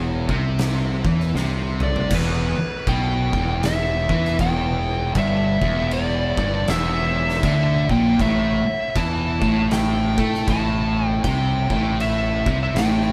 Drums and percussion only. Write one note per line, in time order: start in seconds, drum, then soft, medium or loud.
0.29 kick loud
0.59 snare loud
0.59 crash medium
1.05 kick loud
1.20 snare soft
1.35 snare medium
1.80 mid tom loud
1.96 floor tom loud
2.10 kick loud
2.10 crash loud
2.10 crash medium
2.87 kick loud
2.87 crash medium
3.33 kick loud
3.63 snare loud
3.63 crash medium
4.09 kick loud
4.25 snare soft
4.39 kick loud
4.39 crash medium
5.15 kick loud
5.15 crash medium
5.62 kick loud
5.91 crash medium
6.37 kick loud
6.68 snare loud
6.68 crash medium
7.28 snare soft
7.43 kick loud
7.43 crash medium
7.89 kick loud
8.20 kick loud
8.20 crash medium
8.96 kick loud
8.96 crash medium
9.42 kick loud
9.71 snare loud
9.71 crash medium
10.18 kick loud
10.34 snare soft
10.47 kick loud
10.47 crash medium
11.24 kick loud
11.24 crash medium
11.70 kick loud
12.00 crash medium
12.46 kick loud
12.76 snare loud
12.76 crash medium